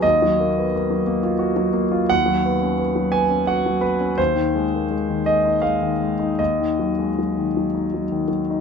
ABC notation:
X:1
M:3/4
L:1/16
Q:1/4=85
K:Ebm
V:1 name="Grand piano"
e12 | ^f6 a2 f2 =B2 | =c6 e2 f4 | e8- e2 z2 |]
V:2 name="Grand piano" clef=bass
E,, G, B, C B, G, B, F G G, B, F | ^D,, ^F, =B, ^C B, F, B, C ^F F, B, C | E,, E, A, B, A, E, A, E A, E, A, E | E,, E, G, A, G, E, G, E G, E, G, E |]